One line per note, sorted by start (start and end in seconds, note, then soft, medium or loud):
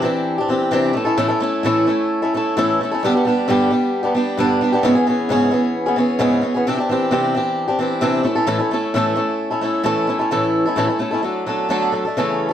0.02 0.38 E3 medium
0.02 0.38 C4 medium
0.02 0.39 D4 medium
0.02 0.37 G4 medium
0.38 0.48 C4 soft
0.38 0.50 D4 medium
0.38 0.50 G4 medium
0.49 0.70 E3 medium
0.49 0.72 C4 medium
0.49 0.72 D4 medium
0.49 0.73 G4 medium
0.71 0.95 C3 medium
0.71 0.93 E3 loud
0.71 0.95 C4 medium
0.71 0.96 D4 loud
0.71 0.96 G4 medium
0.93 1.06 A3 medium
0.93 1.05 C#4 medium
0.93 1.05 E4 medium
0.93 1.04 A4 medium
1.05 1.16 A3 soft
1.05 1.17 C#4 medium
1.05 1.18 E4 medium
1.05 1.18 A4 medium
1.17 1.30 A2 medium
1.17 1.30 E3 loud
1.17 1.30 A3 medium
1.17 1.29 C#4 medium
1.17 1.28 E4 loud
1.17 1.27 A4 medium
1.28 1.39 A3 soft
1.28 1.41 C#4 soft
1.28 1.41 E4 medium
1.28 1.41 A4 medium
1.40 1.64 A3 medium
1.40 1.65 C#4 medium
1.40 1.65 E4 medium
1.40 1.64 A4 medium
1.63 1.87 A2 medium
1.63 1.87 E3 medium
1.63 1.85 A3 medium
1.63 1.86 C#4 medium
1.63 1.88 E4 medium
1.63 1.88 A4 medium
1.87 2.21 A3 medium
1.87 2.22 C#4 medium
1.87 2.21 E4 medium
1.87 2.21 A4 medium
2.22 2.33 A3 medium
2.22 2.34 C#4 soft
2.22 2.33 E4 medium
2.22 2.33 A4 medium
2.34 2.56 A3 medium
2.34 2.57 C#4 medium
2.34 2.58 E4 medium
2.34 2.57 A4 medium
2.57 2.79 A2 medium
2.57 2.79 E3 medium
2.57 2.79 A3 medium
2.57 2.80 C#4 loud
2.57 2.80 E4 loud
2.57 2.80 A4 loud
2.81 2.91 A3 medium
2.81 2.92 C#4 medium
2.81 2.91 E4 medium
2.85 2.90 A4 medium
2.91 3.03 A3 soft
2.91 3.03 C#4 medium
2.91 3.02 E4 medium
2.91 3.02 A4 medium
3.03 3.13 G2 medium
3.03 3.14 D3 medium
3.03 3.14 G3 medium
3.03 3.15 B3 medium
3.03 3.14 D4 medium
3.03 3.13 G4 loud
3.14 3.24 G3 soft
3.14 3.25 B3 medium
3.14 3.25 D4 soft
3.14 3.25 G4 medium
3.25 3.47 G3 medium
3.25 3.48 B3 medium
3.25 3.48 D4 medium
3.25 3.49 G4 medium
3.48 3.70 G2 medium
3.48 3.70 D3 medium
3.48 3.69 G3 medium
3.48 3.70 B3 medium
3.48 3.71 D4 loud
3.48 3.71 G4 medium
3.70 4.04 G3 medium
3.70 4.04 B3 medium
3.70 4.03 D4 medium
3.70 4.02 G4 medium
4.03 4.13 G3 soft
4.03 4.14 B3 soft
4.03 4.15 D4 medium
4.03 4.15 G4 medium
4.15 4.37 G3 medium
4.15 4.38 B3 medium
4.15 4.39 D4 medium
4.15 4.39 G4 medium
4.38 4.60 G2 medium
4.38 4.61 D3 medium
4.38 4.60 G3 loud
4.38 4.61 B3 medium
4.38 4.62 D4 medium
4.38 4.62 G4 medium
4.61 4.72 G3 medium
4.61 4.73 B3 medium
4.61 4.73 D4 medium
4.61 4.71 G4 medium
4.72 4.84 G3 soft
4.72 4.83 B3 medium
4.72 4.84 D4 medium
4.72 4.84 G4 medium
4.83 4.95 G#2 medium
4.83 4.95 C#3 loud
4.83 4.96 E3 medium
4.83 4.95 B3 loud
4.83 4.95 C#4 medium
4.83 4.94 G#4 loud
4.95 5.06 E3 medium
4.95 5.06 B3 soft
4.95 5.07 C#4 medium
4.95 5.06 G#4 medium
5.07 5.29 E3 medium
5.07 5.29 B3 medium
5.07 5.30 C#4 medium
5.07 5.30 G#4 medium
5.29 5.52 G#2 medium
5.29 5.52 C#3 medium
5.29 5.50 E3 medium
5.29 5.50 B3 medium
5.29 5.52 C#4 medium
5.29 5.53 G#4 loud
5.51 5.86 E3 medium
5.51 5.86 B3 medium
5.51 5.85 C#4 medium
5.51 5.85 G#4 medium
5.86 5.95 E3 soft
5.86 5.97 B3 medium
5.86 5.97 C#4 medium
5.86 5.97 G#4 medium
5.96 6.18 E3 medium
5.96 6.19 B3 medium
5.96 6.20 C#4 medium
6.00 6.20 G#4 medium
6.19 6.42 G#2 medium
6.19 6.43 C#3 medium
6.19 6.40 E3 loud
6.19 6.42 B3 loud
6.19 6.43 C#4 medium
6.19 6.43 G#4 loud
6.42 6.54 E3 medium
6.42 6.54 B3 medium
6.42 6.55 C#4 medium
6.42 6.53 G#4 medium
6.54 6.66 E3 soft
6.54 6.67 B3 medium
6.54 6.67 C#4 medium
6.54 6.66 G#4 medium
6.67 6.78 C3 loud
6.67 6.78 E3 medium
6.67 6.78 C4 medium
6.67 6.79 D4 medium
6.67 6.77 G4 loud
6.78 6.90 C4 soft
6.78 6.90 D4 medium
6.78 6.89 G4 medium
6.89 7.10 E3 medium
6.89 7.11 C4 medium
6.89 7.11 D4 medium
6.89 7.12 G4 medium
7.11 7.34 C3 medium
7.11 7.33 E3 medium
7.11 7.34 C4 medium
7.11 7.35 D4 medium
7.11 7.35 G4 medium
7.34 7.69 E3 medium
7.34 7.68 C4 medium
7.34 7.67 D4 medium
7.34 7.67 G4 medium
7.68 7.79 C4 soft
7.68 7.80 D4 medium
7.68 7.80 G4 medium
7.79 8.01 E3 medium
7.79 8.01 C4 medium
7.79 8.01 D4 medium
7.79 8.02 G4 medium
8.01 8.25 C3 loud
8.01 8.23 E3 medium
8.01 8.24 C4 loud
8.01 8.25 D4 medium
8.01 8.26 G4 loud
8.23 8.36 A3 medium
8.23 8.36 C#4 medium
8.23 8.35 E4 medium
8.23 8.34 A4 medium
8.35 8.46 A3 soft
8.35 8.46 C#4 medium
8.35 8.47 E4 medium
8.35 8.47 A4 medium
8.47 8.59 A2 medium
8.47 8.59 E3 medium
8.47 8.59 A3 medium
8.47 8.59 C#4 loud
8.47 8.58 E4 medium
8.47 8.57 A4 loud
8.59 8.70 A3 soft
8.59 8.72 C#4 soft
8.59 8.71 E4 medium
8.59 8.71 A4 medium
8.71 8.94 A3 medium
8.71 8.94 C#4 medium
8.71 8.95 E4 medium
8.71 8.96 A4 medium
8.94 9.17 A2 loud
8.94 9.17 E3 medium
8.94 9.14 A3 medium
8.94 9.16 C#4 medium
8.94 9.16 E4 loud
8.94 9.17 A4 medium
9.16 9.51 A3 medium
9.16 9.51 C#4 medium
9.16 9.50 E4 medium
9.16 9.49 A4 medium
9.50 9.60 A3 medium
9.50 9.61 C#4 medium
9.50 9.63 E4 medium
9.50 9.63 A4 medium
9.61 9.83 A3 medium
9.61 9.85 C#4 medium
9.61 9.85 E4 medium
9.61 9.84 A4 medium
9.83 10.08 A2 medium
9.83 10.08 E3 medium
9.83 10.06 A3 medium
9.83 10.08 C#4 loud
9.83 10.08 E4 medium
9.83 10.09 A4 medium
10.07 10.20 A3 medium
10.07 10.20 C#4 medium
10.07 10.18 E4 medium
10.07 10.18 A4 medium
10.19 10.31 A3 soft
10.19 10.31 C#4 soft
10.19 10.31 E4 medium
10.19 10.31 A4 medium
10.31 10.66 A2 medium
10.31 10.66 E3 medium
10.31 10.66 A3 medium
10.31 10.67 C#4 medium
10.31 10.66 E4 medium
10.31 10.64 A4 medium
10.66 10.76 A3 soft
10.66 10.77 C#4 soft
10.66 10.77 E4 medium
10.66 10.78 A4 medium
10.76 10.89 A2 medium
10.76 10.89 E3 medium
10.76 10.89 A3 medium
10.76 10.88 C#4 medium
10.76 10.87 E4 medium
10.76 10.86 A4 medium
10.87 10.98 A3 soft
10.87 10.99 C#4 soft
10.87 11.00 E4 soft
10.87 11.00 A4 soft
10.99 11.12 A3 medium
10.99 11.12 C#4 medium
10.99 11.12 E4 medium
10.99 11.10 A4 medium
11.11 11.22 A3 soft
11.11 11.22 C#4 soft
11.11 11.24 E4 soft
11.11 11.23 A4 medium
11.22 11.45 F#3 medium
11.22 11.46 A3 medium
11.22 11.47 D4 medium
11.22 11.48 A4 medium
11.46 11.69 F#3 medium
11.46 11.69 A3 medium
11.46 11.69 D4 medium
11.46 11.70 A4 medium
11.69 11.92 D3 medium
11.69 11.91 F#3 medium
11.69 11.92 A3 medium
11.69 11.93 D4 medium
11.69 11.94 A4 medium
11.92 12.04 F#3 medium
11.92 12.05 A3 medium
11.92 12.05 D4 medium
11.92 12.04 A4 medium
12.05 12.17 A3 soft
12.05 12.17 D4 soft
12.05 12.16 A4 medium
12.17 12.51 C#3 medium
12.17 12.51 E3 medium
12.17 12.51 A3 medium
12.17 12.49 C#4 medium
12.17 12.47 A4 medium
12.49 12.53 A4 medium